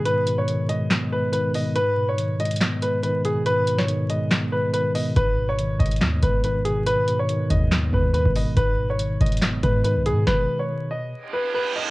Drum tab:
HH |x---x---x---x---x-------x---o---|x-------x---xxxxx---x---x---x---|x---x---x---x---x-------x---o---|x-------x---xxxxx---x---x---x---|
CP |----------------x---------------|----------------x---------------|----------------x---------------|----------------x---------------|
SD |----------------o---------------|----------------o---------------|------o---------o---------------|----------------o---------------|
BD |--------------------------------|--------------------------------|--------------------------------|o-----------o-------o-----------|

HH |x---x---x---x---x-------x---o---|x-------x---xxxxx---x---x---x---|--------------------------------|
CP |----------------x---------------|----------------x---------------|--------------------------------|
SD |----------------o---------------|----------------o---------------|o-------------------------------|
BD |------------o-------o-----o-----|o-----------o-------o-----------|o-------------------------------|